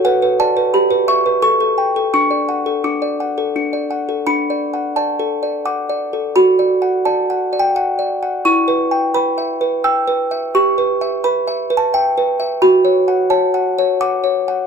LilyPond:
\new Staff \with { instrumentName = "Music box" } { \time 3/4 \key d \major \tempo 4 = 86 << { fis''8 a''8 b''8 cis'''8 cis'''4 | cis'''4 d'''4 r4 | b''4 a''4 d'''4 | b''4 a''8. g''16 fis''4 |
cis'''4 b''4 e'''4 | cis'''4 b''8. a''16 g''4 | b''4 a''4 d'''4 | } \\ { b'16 b'16 d''16 b'16 g'16 b'16 e''16 b'16 a'16 a'16 g''16 a'16 | d'16 d''16 fis''16 a'16 d'16 d''16 fis''16 a'16 d'16 d''16 fis''16 a'16 | \tuplet 3/2 { d'8 d''8 fis''8 d''8 a'8 d''8 fis''8 d''8 a'8 } | \tuplet 3/2 { fis'8 d''8 fis''8 d''8 fis''8 d''8~ d''8 d''8 fis''8 } |
\tuplet 3/2 { e'8 b'8 g''8 b'8 e''8 b'8 g''8 b'8 e''8 } | \tuplet 3/2 { g'8 b'8 e''8 b'8 e''8 b'8 e''8 b'8 e''8 } | \tuplet 3/2 { fis'8 cis''8 fis''8 cis''8 fis''8 cis''8 fis''8 cis''8 fis''8 } | } >> }